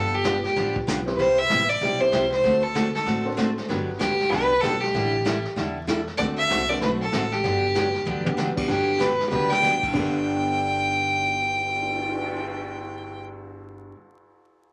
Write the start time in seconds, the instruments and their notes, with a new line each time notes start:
Already playing: upright bass G1, steel-string acoustic guitar D3 F3 B3 D4 G4, fiddle A4
0.15 fiddle G4
0.24 steel-string acoustic guitar D3 F3 B3 D4 G4, kick, snare, hi-hat pedal
0.44 fiddle G4, snare
0.56 upright bass A1, steel-string acoustic guitar D3 F3 B3 D4 G4, brush sweep, kick, snare
0.76 kick
0.87 upright bass B1, steel-string acoustic guitar D3 F3 B3 D4 G4, kick, snare, hi-hat pedal
1.06 honky-tonk piano C4 E4 G4 B4 C5, snare
1.16 upright bass C2, steel-string acoustic guitar C3 G3 B3, fiddle B4 C5, brush sweep, kick, snare
1.20 steel-string acoustic guitar E4 G4
1.39 fiddle E5
1.50 upright bass A1, steel-string acoustic guitar C3 G3 B3 E4 G4, kick, snare, hi-hat pedal
1.69 fiddle D5
1.81 upright bass B1, steel-string acoustic guitar C3 G3 B3 E4 G4, brush sweep, kick, snare
2.00 honky-tonk piano C4 E4 G4 C5, fiddle C5
2.12 upright bass C2, steel-string acoustic guitar C3 G3 B3 E4 G4, kick, snare, hi-hat pedal
2.32 fiddle C5, snare
2.43 upright bass D2, steel-string acoustic guitar D3 A3 C4 F#4 A4, brush sweep, kick, snare
2.63 fiddle A4
2.75 steel-string acoustic guitar D3 A3 C4 F#4 A4, kick, snare, hi-hat pedal
2.94 fiddle A4, snare
3.06 upright bass A1, steel-string acoustic guitar D3 A3 C4 F#4 A4, brush sweep, kick, snare
3.25 honky-tonk piano C4 D4 F#4 A4 C5
3.37 steel-string acoustic guitar D3 A3 C4 F#4 A4, kick, snare, hi-hat pedal
3.58 snare
3.68 upright bass G1, steel-string acoustic guitar D3 F#3 B3 D4 G4, honky-tonk piano B3 D4 F#4 G4 B4, brush sweep, kick, snare
3.99 upright bass D2, steel-string acoustic guitar D3 F#3 B3 D4 G4, fiddle G4, kick, snare, hi-hat pedal
4.20 snare
4.29 upright bass C2, steel-string acoustic guitar D3 F#3 B3 D4 G4, fiddle B4, brush sweep, kick, snare
4.60 upright bass B1, steel-string acoustic guitar D3 F#3 B3 D4 G4, fiddle A4, kick, snare, hi-hat pedal
4.80 fiddle G4, snare
4.94 upright bass A1, steel-string acoustic guitar D3 G3 D4 E4 A4, honky-tonk piano A3 D4 E4 G4 A4, brush sweep, kick, snare
5.25 steel-string acoustic guitar D3 G3 D4 E4 A4, kick, snare, hi-hat pedal
5.45 snare
5.56 upright bass E2, steel-string acoustic guitar D3 G3 D4 E4 A4, brush sweep, kick, snare
5.87 steel-string acoustic guitar D3 G3 D4 E4 A4, kick, snare, hi-hat pedal
6.07 snare
6.17 upright bass D2, steel-string acoustic guitar D3 A3 C4 F#4 A4, honky-tonk piano A3 C4 D4 F#4 A4, fiddle D5, brush sweep, kick, snare
6.37 fiddle E5
6.49 upright bass C2, steel-string acoustic guitar D3 A3 C4 F#4 A4, kick, snare, hi-hat pedal
6.69 honky-tonk piano A3 C4 D4 F#4 A4, fiddle D5, snare
6.81 upright bass B1, steel-string acoustic guitar D3 A3 C4 F#4 A4, fiddle B4, brush sweep, kick, snare
7.02 fiddle A4
7.12 upright bass A1, steel-string acoustic guitar D3 A3 C4 F#4 A4, kick, snare, hi-hat pedal
7.32 fiddle G4, snare
7.43 upright bass G1, steel-string acoustic guitar D3 F#3 B3 D4 G4, brush sweep, kick, snare
7.75 steel-string acoustic guitar D3 F#3 B3 D4 G4, kick, snare, hi-hat pedal
7.95 snare
8.05 upright bass D2, steel-string acoustic guitar D3 F#3 B3 D4 G4, high tom
8.25 honky-tonk piano G3 B3 D4 F#4 G4, high tom
8.37 steel-string acoustic guitar D3 F#3 B3 D4 G4, snare, hi-hat pedal
8.56 honky-tonk piano G3 B3 D4 F#4 G4, kick, crash
8.68 upright bass G1, steel-string acoustic guitar D3 F#3 B3 D4 G4, fiddle G4, brush sweep, kick, snare
8.99 steel-string acoustic guitar D3 F#3 B3 D4 G4, fiddle B4, kick, snare, hi-hat pedal
9.21 snare
9.28 upright bass D2, steel-string acoustic guitar D3 F#3 B3 D4, honky-tonk piano G3 B3 D4 F#4 G4, hollow-body jazz guitar G4, fiddle B4
9.32 steel-string acoustic guitar G4, mid tom
9.49 hollow-body jazz guitar D5, fiddle G5, snare
9.62 steel-string acoustic guitar D3 F#3 B3 D4 G4, honky-tonk piano G3 B3 D4 F#4 G4, snare, hi-hat pedal
9.83 kick, crash
9.88 honky-tonk piano G2 D3
9.93 upright bass G1, steel-string acoustic guitar G2 D3 B3 D4 G4, honky-tonk piano B3, fiddle G5, kick, crash
10.00 honky-tonk piano A4
10.14 cymbal swell